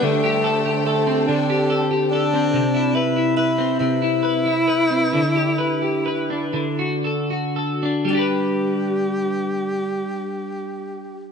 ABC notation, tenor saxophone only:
X:1
M:6/8
L:1/8
Q:3/8=44
K:G
V:1 name="Tenor saxophone"
A,2 A, D z D- | D E E E3- | E4 z2 | G6 |]